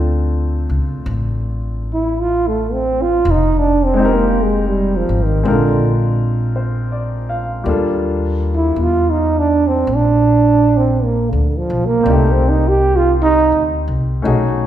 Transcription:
Already playing: D2 A3 C4 D4 F4 A4
0.69 C#2
1.06 A1
1.93 E4
2.21 F4
2.47 A3
2.72 C4
3.02 F4
3.25 F1
3.31 D#4
3.58 D4
3.85 C4
3.94 G#3 C4
3.99 D#4 G4
4.05 A#4
4.15 A#3
4.44 G#3
4.68 G3
4.96 F3
5.09 G#1
5.25 D#3
5.43 A#1 G#3 C4 D4 F4
5.48 D3 A#4
6.56 C5
6.92 D5
7.29 F5
7.64 D#2 G3 A#3 D4 F4
7.69 A4
8.54 E4
8.76 E2
8.82 F4
9.10 D#4
9.39 D4
9.67 C4
9.87 A#1
9.96 D4
10.77 C4
11.04 A#3
11.31 D2 D3
11.57 F3
11.70 B1
11.86 A#3
12.00 A#3 C4
12.05 C2 D#4 D5
12.11 A3 G4
12.31 C4
12.49 D#4
12.68 G4
12.96 F4
13.22 D#4
13.52 D2
13.88 C2
14.22 B1 A3 C#4 D#4 F#4
14.27 G#4

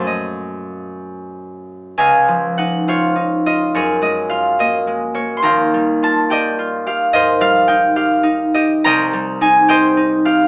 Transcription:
Already playing: F#2 F#3 D#4 C#5
0.00 A3 C#4
0.07 D#5
1.97 C#2 D#5 F5 G#5
2.28 F3
2.58 D#4 F#5
2.88 F4 C5 C#5 F5
3.16 D#4
3.46 F4 D#5
3.74 F#2 G#4 A#4 C#5
4.02 G#3 D#5
4.29 F4 F5
4.59 A#3 D#5
4.87 G#3
5.14 A#3 C#5
5.37 C6
5.42 D#2 F5 G5 A#5
5.74 G3
6.03 F4 A5
6.30 G4 D5 D#5 G5
6.59 F4
6.86 G4 F5
7.13 G#2 A#4 C5 D#5
7.41 G3 F5
7.68 D#4 G5
7.96 G4 F5
8.23 D#4
8.54 G4 D#5
8.84 C2 D#5 G5 A#5
9.13 G3
9.41 D#4 G#5
9.68 G4 C5 D#5 G5
9.97 D#4
10.25 G4 F5

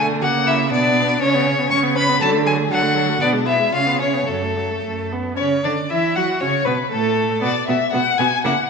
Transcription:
Already playing: D3 A3
0.21 C#3 A#3 F#4 F#5
0.46 E4 E5
0.70 B2 B3 D4 D5
1.20 C#3 C#4 C#5
1.35 B3
1.47 C#4
1.58 B3
1.70 C#3 C#4 C#5 C#6
1.83 B3
1.95 C#4 B4 B5
2.09 B3
2.21 D3 F#3 A4 A5
2.33 A3
2.46 F#3 G#4 G#5
2.59 A3
2.70 D3 F#3 F#4 F#5
2.83 A3
2.95 F#3
3.09 A3
3.21 B2 B3 D4 D5
3.33 G#3
3.46 B3 E4 E5
3.59 G#3
3.72 C#3 C#4 F4 F5
3.86 B3
3.98 C#4 C#5
4.13 B3
4.26 F#2 F#3 A3 A4
4.42 A3
4.57 F#3
4.71 A3
4.83 F#2 A3
5.12 B3
5.37 C#3 C#4 C#5
5.64 D3 D4 D5
5.90 E3 E4 E5
6.15 F#3 F#4 F#5
6.41 C#3 C#4 C#5
6.65 B2 B3 B4
6.91 A2 A3 A4
7.41 B2 B3 F#4 D5
7.68 B2 B3 F#4 E5
7.93 B2 B3 F#4 F#5
8.18 B2 B3 F#4 G#5
8.44 C#3 A#3 E4 F#5

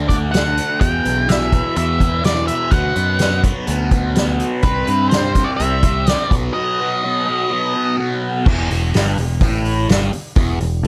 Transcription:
Already playing: D2 D3 A3
0.08 D4 D5, kick, closed hi-hat
0.13 A3
0.32 D3 F#5, snare, closed hi-hat
0.36 A3 D4
0.57 closed hi-hat
0.81 E2 B2 E3 G5, kick, closed hi-hat
1.05 B1 B2 E3, closed hi-hat
1.28 E2 B2 E3 E5, snare, closed hi-hat
1.52 B2 E3, kick, closed hi-hat
1.76 E2 B2 E3 E5, closed hi-hat
2.00 B2 E3, kick, closed hi-hat
2.23 E2 B2 E3 D5, snare, closed hi-hat
2.47 E5, closed hi-hat
2.71 D2 B2 F#3 B3 F#5, kick, closed hi-hat
2.96 F#2 F#3 B3, closed hi-hat
3.19 B2 F#3 B3, snare, closed hi-hat
3.44 F#3 B3, kick, closed hi-hat
3.67 D2 B2 F#3 B3, closed hi-hat
3.91 F#3 B3, kick, closed hi-hat
4.15 B2 F#3 B3, snare, closed hi-hat
4.40 closed hi-hat
4.63 C2 C3 G3 C4 B4, kick, closed hi-hat
4.87 G2 G3 C4, closed hi-hat
5.09 C3 G3 C5, snare, closed hi-hat
5.14 C4
5.35 G3 C4, kick, closed hi-hat
5.44 D5
5.57 C2 C3 E5, closed hi-hat
5.61 G3 C4
5.83 G3 C4, kick, closed hi-hat
6.06 C3 G3 C4 D5, snare, closed hi-hat
6.30 B1 B2 F#3 B3, kick, closed hi-hat
6.53 B2 D#5
6.57 F#3 B3
6.79 F#3 B3
7.03 B2 F#3 B3
7.26 F#3 B3
7.50 B2 F#3 B3
7.74 F#3 B3
7.97 B2 F#3 B3
8.46 E1 E2, kick, crash
8.70 E1 E2, open hi-hat
8.94 G1 G2, snare, open hi-hat
9.18 E1 E2, open hi-hat
9.41 A1 A2, kick, open hi-hat
9.65 open hi-hat
9.89 G1 G2, snare, open hi-hat
10.13 muted distorted electric guitar stroke, muted picked electric bass stroke, open hi-hat
10.36 E1 E2, kick, open hi-hat
10.60 E1 E2, open hi-hat
10.83 D2

